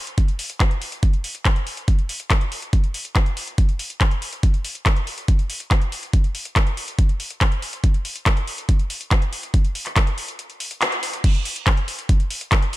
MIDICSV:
0, 0, Header, 1, 2, 480
1, 0, Start_track
1, 0, Tempo, 425532
1, 1160, Time_signature, 4, 2, 24, 8
1, 14402, End_track
2, 0, Start_track
2, 0, Title_t, "Drums"
2, 80, Note_on_c, 9, 42, 50
2, 193, Note_off_c, 9, 42, 0
2, 200, Note_on_c, 9, 36, 116
2, 200, Note_on_c, 9, 42, 54
2, 313, Note_off_c, 9, 36, 0
2, 313, Note_off_c, 9, 42, 0
2, 320, Note_on_c, 9, 42, 28
2, 433, Note_off_c, 9, 42, 0
2, 440, Note_on_c, 9, 46, 107
2, 553, Note_off_c, 9, 46, 0
2, 560, Note_on_c, 9, 42, 55
2, 673, Note_off_c, 9, 42, 0
2, 680, Note_on_c, 9, 36, 126
2, 680, Note_on_c, 9, 39, 121
2, 680, Note_on_c, 9, 42, 52
2, 793, Note_off_c, 9, 36, 0
2, 793, Note_off_c, 9, 39, 0
2, 793, Note_off_c, 9, 42, 0
2, 800, Note_on_c, 9, 42, 28
2, 913, Note_off_c, 9, 42, 0
2, 920, Note_on_c, 9, 46, 98
2, 1033, Note_off_c, 9, 46, 0
2, 1040, Note_on_c, 9, 42, 51
2, 1153, Note_off_c, 9, 42, 0
2, 1160, Note_on_c, 9, 36, 123
2, 1160, Note_on_c, 9, 42, 46
2, 1273, Note_off_c, 9, 36, 0
2, 1273, Note_off_c, 9, 42, 0
2, 1280, Note_on_c, 9, 42, 25
2, 1393, Note_off_c, 9, 42, 0
2, 1400, Note_on_c, 9, 46, 104
2, 1513, Note_off_c, 9, 46, 0
2, 1520, Note_on_c, 9, 42, 52
2, 1633, Note_off_c, 9, 42, 0
2, 1640, Note_on_c, 9, 36, 127
2, 1640, Note_on_c, 9, 39, 115
2, 1640, Note_on_c, 9, 42, 48
2, 1753, Note_off_c, 9, 36, 0
2, 1753, Note_off_c, 9, 39, 0
2, 1753, Note_off_c, 9, 42, 0
2, 1760, Note_on_c, 9, 42, 24
2, 1873, Note_off_c, 9, 42, 0
2, 1880, Note_on_c, 9, 46, 91
2, 1993, Note_off_c, 9, 46, 0
2, 2000, Note_on_c, 9, 42, 48
2, 2113, Note_off_c, 9, 42, 0
2, 2120, Note_on_c, 9, 36, 127
2, 2120, Note_on_c, 9, 42, 49
2, 2233, Note_off_c, 9, 36, 0
2, 2233, Note_off_c, 9, 42, 0
2, 2240, Note_on_c, 9, 42, 26
2, 2352, Note_off_c, 9, 42, 0
2, 2360, Note_on_c, 9, 46, 113
2, 2473, Note_off_c, 9, 46, 0
2, 2480, Note_on_c, 9, 42, 52
2, 2593, Note_off_c, 9, 42, 0
2, 2600, Note_on_c, 9, 36, 125
2, 2600, Note_on_c, 9, 39, 118
2, 2600, Note_on_c, 9, 42, 51
2, 2713, Note_off_c, 9, 36, 0
2, 2713, Note_off_c, 9, 39, 0
2, 2713, Note_off_c, 9, 42, 0
2, 2720, Note_on_c, 9, 42, 27
2, 2833, Note_off_c, 9, 42, 0
2, 2840, Note_on_c, 9, 46, 100
2, 2953, Note_off_c, 9, 46, 0
2, 2960, Note_on_c, 9, 42, 49
2, 3072, Note_off_c, 9, 42, 0
2, 3080, Note_on_c, 9, 36, 118
2, 3080, Note_on_c, 9, 42, 46
2, 3192, Note_off_c, 9, 42, 0
2, 3193, Note_off_c, 9, 36, 0
2, 3200, Note_on_c, 9, 42, 25
2, 3312, Note_off_c, 9, 42, 0
2, 3320, Note_on_c, 9, 46, 107
2, 3432, Note_off_c, 9, 46, 0
2, 3439, Note_on_c, 9, 42, 50
2, 3552, Note_off_c, 9, 42, 0
2, 3560, Note_on_c, 9, 36, 126
2, 3560, Note_on_c, 9, 39, 119
2, 3560, Note_on_c, 9, 42, 51
2, 3672, Note_off_c, 9, 39, 0
2, 3672, Note_off_c, 9, 42, 0
2, 3673, Note_off_c, 9, 36, 0
2, 3680, Note_on_c, 9, 42, 24
2, 3793, Note_off_c, 9, 42, 0
2, 3800, Note_on_c, 9, 46, 97
2, 3912, Note_off_c, 9, 46, 0
2, 3919, Note_on_c, 9, 42, 49
2, 4032, Note_off_c, 9, 42, 0
2, 4039, Note_on_c, 9, 42, 53
2, 4040, Note_on_c, 9, 36, 123
2, 4152, Note_off_c, 9, 42, 0
2, 4153, Note_off_c, 9, 36, 0
2, 4159, Note_on_c, 9, 42, 25
2, 4272, Note_off_c, 9, 42, 0
2, 4279, Note_on_c, 9, 46, 111
2, 4392, Note_off_c, 9, 46, 0
2, 4400, Note_on_c, 9, 42, 52
2, 4512, Note_off_c, 9, 42, 0
2, 4520, Note_on_c, 9, 36, 127
2, 4520, Note_on_c, 9, 39, 114
2, 4520, Note_on_c, 9, 42, 50
2, 4632, Note_off_c, 9, 39, 0
2, 4632, Note_off_c, 9, 42, 0
2, 4633, Note_off_c, 9, 36, 0
2, 4640, Note_on_c, 9, 42, 26
2, 4752, Note_off_c, 9, 42, 0
2, 4760, Note_on_c, 9, 46, 93
2, 4872, Note_off_c, 9, 46, 0
2, 4880, Note_on_c, 9, 42, 47
2, 4993, Note_off_c, 9, 42, 0
2, 5000, Note_on_c, 9, 36, 115
2, 5000, Note_on_c, 9, 42, 47
2, 5113, Note_off_c, 9, 36, 0
2, 5113, Note_off_c, 9, 42, 0
2, 5120, Note_on_c, 9, 42, 25
2, 5233, Note_off_c, 9, 42, 0
2, 5240, Note_on_c, 9, 46, 105
2, 5353, Note_off_c, 9, 46, 0
2, 5360, Note_on_c, 9, 42, 49
2, 5472, Note_off_c, 9, 42, 0
2, 5480, Note_on_c, 9, 36, 127
2, 5480, Note_on_c, 9, 39, 113
2, 5480, Note_on_c, 9, 42, 48
2, 5593, Note_off_c, 9, 36, 0
2, 5593, Note_off_c, 9, 39, 0
2, 5593, Note_off_c, 9, 42, 0
2, 5600, Note_on_c, 9, 42, 26
2, 5713, Note_off_c, 9, 42, 0
2, 5720, Note_on_c, 9, 46, 91
2, 5832, Note_off_c, 9, 46, 0
2, 5840, Note_on_c, 9, 42, 48
2, 5953, Note_off_c, 9, 42, 0
2, 5960, Note_on_c, 9, 36, 124
2, 5960, Note_on_c, 9, 42, 53
2, 6072, Note_off_c, 9, 36, 0
2, 6073, Note_off_c, 9, 42, 0
2, 6080, Note_on_c, 9, 42, 27
2, 6193, Note_off_c, 9, 42, 0
2, 6200, Note_on_c, 9, 46, 106
2, 6312, Note_off_c, 9, 46, 0
2, 6320, Note_on_c, 9, 42, 49
2, 6432, Note_off_c, 9, 42, 0
2, 6440, Note_on_c, 9, 36, 127
2, 6440, Note_on_c, 9, 39, 112
2, 6440, Note_on_c, 9, 42, 49
2, 6552, Note_off_c, 9, 36, 0
2, 6553, Note_off_c, 9, 39, 0
2, 6553, Note_off_c, 9, 42, 0
2, 6560, Note_on_c, 9, 42, 25
2, 6673, Note_off_c, 9, 42, 0
2, 6680, Note_on_c, 9, 46, 93
2, 6793, Note_off_c, 9, 46, 0
2, 6800, Note_on_c, 9, 42, 50
2, 6912, Note_off_c, 9, 42, 0
2, 6920, Note_on_c, 9, 36, 115
2, 6920, Note_on_c, 9, 42, 49
2, 7032, Note_off_c, 9, 36, 0
2, 7033, Note_off_c, 9, 42, 0
2, 7040, Note_on_c, 9, 42, 25
2, 7152, Note_off_c, 9, 42, 0
2, 7160, Note_on_c, 9, 46, 97
2, 7272, Note_off_c, 9, 46, 0
2, 7280, Note_on_c, 9, 42, 54
2, 7392, Note_off_c, 9, 42, 0
2, 7400, Note_on_c, 9, 36, 115
2, 7400, Note_on_c, 9, 39, 111
2, 7400, Note_on_c, 9, 42, 53
2, 7512, Note_off_c, 9, 36, 0
2, 7513, Note_off_c, 9, 39, 0
2, 7513, Note_off_c, 9, 42, 0
2, 7520, Note_on_c, 9, 42, 25
2, 7632, Note_off_c, 9, 42, 0
2, 7640, Note_on_c, 9, 46, 87
2, 7752, Note_off_c, 9, 46, 0
2, 7760, Note_on_c, 9, 42, 54
2, 7873, Note_off_c, 9, 42, 0
2, 7880, Note_on_c, 9, 36, 117
2, 7880, Note_on_c, 9, 42, 52
2, 7993, Note_off_c, 9, 36, 0
2, 7993, Note_off_c, 9, 42, 0
2, 8000, Note_on_c, 9, 42, 27
2, 8112, Note_off_c, 9, 42, 0
2, 8120, Note_on_c, 9, 46, 98
2, 8232, Note_off_c, 9, 46, 0
2, 8240, Note_on_c, 9, 42, 50
2, 8353, Note_off_c, 9, 42, 0
2, 8360, Note_on_c, 9, 36, 117
2, 8360, Note_on_c, 9, 39, 115
2, 8360, Note_on_c, 9, 42, 51
2, 8473, Note_off_c, 9, 36, 0
2, 8473, Note_off_c, 9, 39, 0
2, 8473, Note_off_c, 9, 42, 0
2, 8480, Note_on_c, 9, 42, 27
2, 8593, Note_off_c, 9, 42, 0
2, 8600, Note_on_c, 9, 46, 89
2, 8712, Note_off_c, 9, 46, 0
2, 8719, Note_on_c, 9, 42, 51
2, 8832, Note_off_c, 9, 42, 0
2, 8839, Note_on_c, 9, 42, 50
2, 8840, Note_on_c, 9, 36, 109
2, 8952, Note_off_c, 9, 42, 0
2, 8953, Note_off_c, 9, 36, 0
2, 8959, Note_on_c, 9, 42, 27
2, 9072, Note_off_c, 9, 42, 0
2, 9080, Note_on_c, 9, 46, 101
2, 9192, Note_off_c, 9, 46, 0
2, 9200, Note_on_c, 9, 42, 57
2, 9312, Note_off_c, 9, 42, 0
2, 9320, Note_on_c, 9, 36, 114
2, 9320, Note_on_c, 9, 39, 117
2, 9320, Note_on_c, 9, 42, 52
2, 9432, Note_off_c, 9, 39, 0
2, 9432, Note_off_c, 9, 42, 0
2, 9433, Note_off_c, 9, 36, 0
2, 9440, Note_on_c, 9, 42, 26
2, 9553, Note_off_c, 9, 42, 0
2, 9560, Note_on_c, 9, 46, 86
2, 9672, Note_off_c, 9, 46, 0
2, 9680, Note_on_c, 9, 42, 53
2, 9793, Note_off_c, 9, 42, 0
2, 9800, Note_on_c, 9, 36, 107
2, 9800, Note_on_c, 9, 42, 56
2, 9912, Note_off_c, 9, 42, 0
2, 9913, Note_off_c, 9, 36, 0
2, 9920, Note_on_c, 9, 42, 28
2, 10033, Note_off_c, 9, 42, 0
2, 10039, Note_on_c, 9, 46, 102
2, 10152, Note_off_c, 9, 46, 0
2, 10160, Note_on_c, 9, 42, 54
2, 10272, Note_off_c, 9, 42, 0
2, 10280, Note_on_c, 9, 36, 121
2, 10280, Note_on_c, 9, 39, 119
2, 10280, Note_on_c, 9, 42, 55
2, 10393, Note_off_c, 9, 36, 0
2, 10393, Note_off_c, 9, 39, 0
2, 10393, Note_off_c, 9, 42, 0
2, 10400, Note_on_c, 9, 42, 29
2, 10513, Note_off_c, 9, 42, 0
2, 10520, Note_on_c, 9, 46, 93
2, 10632, Note_off_c, 9, 46, 0
2, 10640, Note_on_c, 9, 42, 53
2, 10753, Note_off_c, 9, 42, 0
2, 10760, Note_on_c, 9, 36, 112
2, 10760, Note_on_c, 9, 42, 50
2, 10872, Note_off_c, 9, 36, 0
2, 10873, Note_off_c, 9, 42, 0
2, 10880, Note_on_c, 9, 42, 27
2, 10993, Note_off_c, 9, 42, 0
2, 11000, Note_on_c, 9, 46, 99
2, 11113, Note_off_c, 9, 46, 0
2, 11120, Note_on_c, 9, 39, 37
2, 11120, Note_on_c, 9, 42, 56
2, 11233, Note_off_c, 9, 39, 0
2, 11233, Note_off_c, 9, 42, 0
2, 11240, Note_on_c, 9, 36, 118
2, 11240, Note_on_c, 9, 39, 116
2, 11240, Note_on_c, 9, 42, 57
2, 11353, Note_off_c, 9, 36, 0
2, 11353, Note_off_c, 9, 39, 0
2, 11353, Note_off_c, 9, 42, 0
2, 11360, Note_on_c, 9, 42, 27
2, 11473, Note_off_c, 9, 42, 0
2, 11480, Note_on_c, 9, 46, 90
2, 11593, Note_off_c, 9, 46, 0
2, 11600, Note_on_c, 9, 42, 55
2, 11712, Note_off_c, 9, 42, 0
2, 11720, Note_on_c, 9, 42, 57
2, 11832, Note_off_c, 9, 42, 0
2, 11840, Note_on_c, 9, 42, 30
2, 11952, Note_off_c, 9, 42, 0
2, 11960, Note_on_c, 9, 46, 102
2, 12072, Note_off_c, 9, 46, 0
2, 12080, Note_on_c, 9, 42, 54
2, 12192, Note_off_c, 9, 42, 0
2, 12200, Note_on_c, 9, 39, 118
2, 12200, Note_on_c, 9, 42, 53
2, 12312, Note_off_c, 9, 39, 0
2, 12312, Note_off_c, 9, 42, 0
2, 12320, Note_on_c, 9, 42, 28
2, 12432, Note_off_c, 9, 42, 0
2, 12440, Note_on_c, 9, 46, 91
2, 12552, Note_off_c, 9, 46, 0
2, 12560, Note_on_c, 9, 42, 52
2, 12673, Note_off_c, 9, 42, 0
2, 12680, Note_on_c, 9, 36, 113
2, 12680, Note_on_c, 9, 42, 53
2, 12680, Note_on_c, 9, 49, 98
2, 12792, Note_off_c, 9, 42, 0
2, 12792, Note_off_c, 9, 49, 0
2, 12793, Note_off_c, 9, 36, 0
2, 12800, Note_on_c, 9, 42, 27
2, 12913, Note_off_c, 9, 42, 0
2, 12920, Note_on_c, 9, 46, 105
2, 13033, Note_off_c, 9, 46, 0
2, 13040, Note_on_c, 9, 42, 57
2, 13153, Note_off_c, 9, 42, 0
2, 13160, Note_on_c, 9, 36, 118
2, 13160, Note_on_c, 9, 39, 124
2, 13160, Note_on_c, 9, 42, 53
2, 13273, Note_off_c, 9, 36, 0
2, 13273, Note_off_c, 9, 39, 0
2, 13273, Note_off_c, 9, 42, 0
2, 13280, Note_on_c, 9, 42, 27
2, 13393, Note_off_c, 9, 42, 0
2, 13400, Note_on_c, 9, 46, 96
2, 13513, Note_off_c, 9, 46, 0
2, 13520, Note_on_c, 9, 42, 53
2, 13633, Note_off_c, 9, 42, 0
2, 13640, Note_on_c, 9, 36, 115
2, 13640, Note_on_c, 9, 42, 57
2, 13753, Note_off_c, 9, 36, 0
2, 13753, Note_off_c, 9, 42, 0
2, 13760, Note_on_c, 9, 42, 28
2, 13873, Note_off_c, 9, 42, 0
2, 13880, Note_on_c, 9, 46, 110
2, 13993, Note_off_c, 9, 46, 0
2, 14000, Note_on_c, 9, 42, 55
2, 14113, Note_off_c, 9, 42, 0
2, 14120, Note_on_c, 9, 36, 125
2, 14120, Note_on_c, 9, 39, 124
2, 14120, Note_on_c, 9, 42, 55
2, 14233, Note_off_c, 9, 36, 0
2, 14233, Note_off_c, 9, 39, 0
2, 14233, Note_off_c, 9, 42, 0
2, 14240, Note_on_c, 9, 42, 28
2, 14353, Note_off_c, 9, 42, 0
2, 14360, Note_on_c, 9, 46, 99
2, 14402, Note_off_c, 9, 46, 0
2, 14402, End_track
0, 0, End_of_file